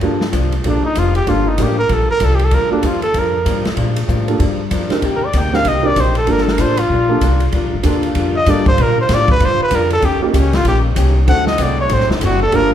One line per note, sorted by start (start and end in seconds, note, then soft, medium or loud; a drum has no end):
0.00 0.22 G2 medium
0.00 0.32 G2 medium
0.00 0.22 F3 medium
0.00 0.23 A#3 medium
0.00 0.20 A#3 medium
0.00 0.20 D4 soft
0.00 0.23 D4 medium
0.00 0.20 F4 soft
0.00 0.20 G4 medium
0.00 0.20 A4 medium
0.00 kick soft
0.00 ride soft
0.21 snare medium
0.32 0.64 C2 medium
0.32 0.53 G2 medium
0.32 0.54 F3 medium
0.32 0.54 A#3 medium
0.32 0.54 D4 medium
0.32 kick soft
0.32 hi-hat pedal medium
0.32 ride medium
0.52 ride soft
0.63 0.82 A#1 medium
0.63 0.84 G2 soft
0.63 0.85 F3 soft
0.63 0.86 A#3 medium
0.63 0.83 A#3 soft
0.63 0.86 D4 medium
0.63 0.83 D4 soft
0.63 0.83 F4 soft
0.63 0.83 G4 soft
0.63 0.83 A4 soft
0.63 kick soft
0.63 ride medium
0.68 0.84 D4 medium
0.83 1.00 D#4 medium
0.83 muted upright bass stroke soft
0.95 1.26 F1 medium
0.95 1.16 G2 medium
0.95 1.17 F3 medium
0.95 1.17 A#3 medium
0.95 1.18 D4 medium
0.95 1.16 F4 medium
0.95 kick soft
0.95 hi-hat pedal medium
0.95 ride medium
1.15 1.31 G4 loud
1.15 ride soft
1.27 1.58 G1 medium
1.27 1.48 G2 soft
1.27 1.48 F3 medium
1.27 1.45 A#3 medium
1.27 1.49 A#3 medium
1.27 1.44 D4 medium
1.27 1.49 D4 medium
1.27 1.44 F4 medium
1.27 1.50 F4 medium
1.27 1.45 G4 medium
1.27 1.45 A4 medium
1.27 kick soft
1.27 ride medium
1.48 1.64 D#4 medium
1.58 1.89 A1 medium
1.58 1.79 G2 medium
1.58 1.80 F3 medium
1.58 1.76 A#3 soft
1.58 1.80 A#3 medium
1.58 1.76 D4 soft
1.58 1.80 D4 medium
1.58 1.76 F4 soft
1.58 1.76 G4 soft
1.58 1.76 A#4 medium
1.58 kick soft
1.58 hi-hat pedal medium
1.58 ride medium
1.62 1.79 G4 medium
1.79 1.95 A#4 loud
1.88 2.08 A#1 medium
1.88 2.10 G2 soft
1.88 2.10 F3 soft
1.88 2.11 A#3 medium
1.88 2.11 D4 medium
1.88 kick soft
1.88 ride medium
1.93 2.10 A4 medium
2.09 2.26 A#4 loud
2.09 muted upright bass stroke soft
2.20 2.51 C2 medium
2.20 2.41 G2 medium
2.20 2.42 F3 medium
2.20 2.42 A#3 medium
2.20 2.42 D4 medium
2.20 kick soft
2.20 hi-hat pedal medium
2.20 ride medium
2.25 2.37 A4 loud
2.35 2.46 G4 medium
2.35 ride soft
2.44 2.56 A4 medium
2.51 2.70 D2 medium
2.51 2.72 G2 medium
2.51 2.73 F3 soft
2.51 2.74 A#3 medium
2.51 2.74 D4 soft
2.51 2.72 A#4 loud
2.51 kick soft
2.51 ride medium
2.71 2.82 A#3 medium
2.71 2.83 D4 medium
2.71 2.88 D4 medium
2.71 2.83 F4 medium
2.71 2.83 G4 medium
2.71 2.83 A4 medium
2.71 muted upright bass stroke soft
2.83 3.13 D#2 medium
2.83 3.04 G2 medium
2.83 3.05 F3 medium
2.83 3.05 A#3 medium
2.83 3.05 D4 medium
2.83 3.03 F4 medium
2.83 kick soft
2.83 hi-hat pedal medium
2.83 ride medium
3.02 3.20 A4 loud
3.02 ride soft
3.14 3.45 F2 medium
3.14 3.35 G2 medium
3.14 3.36 F3 medium
3.14 3.36 A#3 medium
3.14 3.37 D4 medium
3.14 kick soft
3.14 ride medium
3.19 3.68 A#4 medium
3.45 3.66 G2 medium
3.45 3.64 G2 medium
3.45 3.67 F3 medium
3.45 3.67 A#3 medium
3.45 3.67 D4 medium
3.45 kick soft
3.45 hi-hat pedal medium
3.45 ride medium
3.65 muted upright bass stroke soft
3.65 snare medium
3.65 ride soft
3.75 3.97 G2 medium
3.75 4.08 A#2 medium
3.75 3.98 F3 medium
3.75 3.98 A#3 medium
3.75 3.99 D4 medium
3.75 kick soft
3.75 ride medium
3.96 ride medium
4.08 4.29 G2 medium
4.08 4.39 A2 medium
4.08 4.30 F3 medium
4.08 4.30 A#3 medium
4.08 4.30 D4 medium
4.08 kick soft
4.08 hi-hat pedal medium
4.28 4.39 A#3 medium
4.28 4.39 D4 medium
4.28 4.39 F4 medium
4.28 4.39 G4 medium
4.28 4.39 A4 medium
4.28 ride soft
4.39 4.60 G2 medium
4.39 4.70 G2 medium
4.39 4.61 F3 medium
4.39 4.61 A#3 medium
4.39 4.62 D4 medium
4.39 kick soft
4.39 ride medium
4.71 4.89 F2 medium
4.71 4.92 G2 medium
4.71 4.92 F3 medium
4.71 4.93 A#3 medium
4.71 4.93 D4 medium
4.71 kick soft
4.71 hi-hat pedal medium
4.71 ride medium
4.90 5.02 C4 medium
4.90 5.02 D4 medium
4.90 5.02 D#4 soft
4.90 5.01 G4 medium
4.90 5.02 A#4 medium
4.90 muted upright bass stroke soft
4.90 snare soft
4.90 ride soft
5.01 5.33 D#2 medium
5.01 5.23 C3 medium
5.01 5.24 A#3 medium
5.01 5.24 D#4 medium
5.01 5.25 G4 medium
5.01 kick soft
5.01 ride medium
5.16 5.27 A#4 medium
5.26 5.40 D5 medium
5.33 5.64 D2 medium
5.33 5.55 C3 medium
5.33 5.55 A#3 medium
5.33 5.56 D#4 medium
5.33 5.56 G4 medium
5.33 kick soft
5.33 hi-hat pedal medium
5.33 ride medium
5.38 5.56 G5 medium
5.53 5.64 C4 medium
5.53 5.64 D4 medium
5.53 5.64 D#4 medium
5.53 5.64 G4 soft
5.53 5.64 A#4 medium
5.53 5.70 F5 loud
5.53 snare soft
5.65 5.96 C2 medium
5.65 5.86 C3 soft
5.65 5.87 A#3 medium
5.65 5.87 D#4 medium
5.65 5.88 D#5 medium
5.65 kick soft
5.65 ride medium
5.69 5.88 G4 soft
5.83 5.95 C4 medium
5.83 5.95 D4 medium
5.83 5.95 D#4 medium
5.83 5.95 G4 medium
5.83 5.95 A#4 medium
5.83 6.02 D5 loud
5.96 6.27 A#1 medium
5.96 6.17 C3 medium
5.96 6.18 A#3 medium
5.96 6.18 D#4 medium
5.96 6.18 G4 medium
5.96 kick soft
5.96 hi-hat pedal medium
5.96 ride medium
6.00 6.17 C5 medium
6.15 6.33 A4 medium
6.15 ride soft
6.26 6.58 G1 medium
6.26 6.48 G3 medium
6.26 6.74 A#3 medium
6.26 6.74 D4 medium
6.26 6.49 D4 medium
6.26 6.74 F4 medium
6.26 6.50 F4 medium
6.26 6.74 G4 medium
6.26 6.74 A4 medium
6.26 kick soft
6.26 ride medium
6.30 6.50 A#4 medium
6.30 6.44 A#4 loud
6.38 snare soft
6.42 6.53 A4 medium
6.48 snare soft
6.52 6.63 A#4 medium
6.58 6.89 A1 medium
6.58 6.79 G3 medium
6.58 6.80 D4 medium
6.58 6.80 F4 medium
6.58 6.81 A#4 medium
6.58 6.81 C5 medium
6.58 kick soft
6.58 hi-hat pedal medium
6.58 ride medium
6.77 7.53 F4 medium
6.77 ride medium
6.90 7.21 A#1 medium
6.90 7.11 G3 medium
6.90 7.12 D4 medium
6.90 7.12 F4 medium
6.90 7.13 A#4 medium
6.90 kick soft
7.09 7.20 A#3 medium
7.09 7.21 D4 medium
7.09 7.21 F4 medium
7.09 7.21 G4 medium
7.09 7.21 A4 medium
7.21 7.52 C2 medium
7.21 7.43 G3 medium
7.21 7.43 D4 medium
7.21 7.43 F4 medium
7.21 7.44 A#4 medium
7.21 kick soft
7.21 hi-hat pedal medium
7.21 ride medium
7.40 ride medium
7.52 7.63 D2 medium
7.52 10.00 D3 medium
7.52 7.73 G3 medium
7.52 11.24 G3 medium
7.52 10.01 D4 medium
7.52 7.74 D4 medium
7.52 10.00 F4 medium
7.52 7.75 F4 medium
7.52 kick soft
7.52 ride medium
7.56 7.75 A#4 medium
7.63 7.73 A#1 medium
7.73 7.83 G1 medium
7.83 8.14 D#2 medium
7.83 8.05 G3 medium
7.83 8.31 A#3 medium
7.83 8.30 D4 medium
7.83 8.06 D4 medium
7.83 8.31 F4 medium
7.83 8.06 F4 medium
7.83 8.31 G4 soft
7.83 8.31 A4 medium
7.83 kick soft
7.83 hi-hat pedal medium
7.83 ride medium
7.88 8.07 A#4 medium
8.03 ride soft
8.15 8.46 F2 medium
8.15 8.36 G3 medium
8.15 8.37 D4 medium
8.15 8.38 F4 medium
8.15 kick soft
8.15 ride medium
8.19 8.38 A#4 medium
8.36 8.52 D#5 loud
8.46 8.77 G2 loud
8.46 8.68 G3 medium
8.46 8.64 A#3 medium
8.46 8.64 D4 medium
8.46 8.68 D4 medium
8.46 8.64 F4 medium
8.46 8.69 F4 medium
8.46 8.64 G4 medium
8.46 8.64 A4 medium
8.46 8.69 A#4 medium
8.46 kick soft
8.46 hi-hat pedal medium
8.46 ride medium
8.51 8.67 D5 loud
8.66 8.84 C5 loud
8.66 kick medium
8.66 ride soft
8.77 9.08 A#2 medium
8.77 8.98 G3 medium
8.77 8.99 D4 medium
8.77 8.99 F4 medium
8.77 9.00 A#4 medium
8.77 kick soft
8.77 ride medium
8.82 8.99 A#4 loud
9.01 9.16 C5 medium
9.09 9.40 A2 medium
9.09 9.30 G3 medium
9.09 9.30 D4 medium
9.09 9.30 F4 medium
9.09 9.31 A#4 medium
9.09 kick soft
9.09 snare soft
9.09 hi-hat pedal medium
9.09 ride medium
9.14 9.31 D5 loud
9.28 9.47 B4 loud
9.28 kick medium
9.28 ride soft
9.39 9.58 G2 medium
9.39 9.60 G3 soft
9.39 9.61 D4 medium
9.39 9.61 F4 medium
9.39 9.62 A#4 medium
9.39 kick soft
9.39 ride medium
9.45 9.62 C5 loud
9.59 9.77 B4 loud
9.59 muted upright bass stroke soft
9.70 10.02 F2 medium
9.70 9.91 G3 medium
9.70 9.92 D4 medium
9.70 9.92 F4 medium
9.70 9.93 A#4 medium
9.70 kick soft
9.70 hi-hat pedal medium
9.70 ride medium
9.75 9.92 A#4 medium
9.90 10.07 A4 loud
9.90 ride medium
10.00 10.21 D#2 medium
10.00 10.22 D#3 soft
10.00 10.23 A#3 medium
10.00 10.23 C#4 medium
10.00 10.24 G4 medium
10.00 kick soft
10.00 ride medium
10.04 11.27 A#3 medium
10.04 11.27 C#4 medium
10.04 11.27 D#4 medium
10.04 10.23 G4 medium
10.21 10.33 A#3 medium
10.21 10.39 A#3 soft
10.21 10.33 C#4 medium
10.21 10.33 D#4 medium
10.21 10.33 F4 medium
10.21 10.33 G4 medium
10.21 muted upright bass stroke soft
10.33 10.64 C#2 medium
10.33 10.54 D#3 medium
10.33 10.55 A#3 medium
10.33 10.55 C#4 medium
10.33 10.55 G4 medium
10.33 kick soft
10.33 hi-hat pedal medium
10.33 ride medium
10.37 10.57 C#4 medium
10.53 10.66 F4 loud
10.53 snare medium
10.53 ride medium
10.64 10.95 A#1 medium
10.64 10.85 D#3 soft
10.64 10.86 A#3 soft
10.64 10.86 C#4 medium
10.64 10.87 G4 medium
10.64 kick soft
10.64 ride medium
10.68 10.79 G4 medium
10.95 11.27 C2 medium
10.95 11.16 D#3 medium
10.95 11.17 A#3 medium
10.95 11.17 C#4 medium
10.95 11.18 G4 medium
10.95 kick soft
10.95 hi-hat pedal medium
10.95 ride medium
11.27 11.58 D2 medium
11.27 12.52 C3 medium
11.27 11.48 D3 soft
11.27 12.51 F#3 medium
11.27 12.51 A3 medium
11.27 11.45 A3 medium
11.27 11.48 A3 soft
11.27 11.45 C4 medium
11.27 11.49 C4 medium
11.27 11.45 D4 medium
11.27 12.51 D4 medium
11.27 11.45 F#4 medium
11.27 11.49 F#4 medium
11.27 11.45 A4 medium
11.27 11.46 F#5 loud
11.27 kick soft
11.27 ride medium
11.47 11.64 D#5 loud
11.47 snare medium
11.58 11.89 C2 medium
11.58 11.79 D3 medium
11.58 11.80 A3 medium
11.58 11.80 C4 medium
11.58 11.80 F#4 medium
11.58 kick soft
11.58 hi-hat pedal medium
11.58 ride medium
11.62 11.80 D5 medium
11.81 11.95 C#5 loud
11.89 12.01 A1 loud
11.89 12.10 D3 soft
11.89 12.11 A3 medium
11.89 12.11 C4 medium
11.89 12.12 F#4 medium
11.89 kick soft
11.89 ride medium
11.94 12.11 C5 medium
11.99 12.09 F#1 medium
11.99 snare soft
12.09 12.20 D1 medium
12.09 12.26 D#4 medium
12.09 snare soft
12.21 12.52 F#1 loud
12.21 12.42 D3 medium
12.21 12.42 A3 medium
12.21 12.42 C4 medium
12.21 12.43 F#4 medium
12.21 12.42 F#4 medium
12.21 kick soft
12.21 hi-hat pedal medium
12.21 ride medium
12.43 12.57 A4 loud
12.52 12.74 G1 medium
12.52 12.73 G2 medium
12.52 12.74 D3 medium
12.52 12.73 F3 medium
12.52 12.70 G3 medium
12.52 12.74 G3 medium
12.52 12.70 A#3 medium
12.52 12.74 A#3 medium
12.52 12.70 D4 medium
12.52 12.74 D4 medium
12.52 12.70 F4 medium
12.52 12.74 F4 medium
12.52 12.70 A4 medium
12.52 12.73 A#4 loud
12.52 kick soft
12.52 ride medium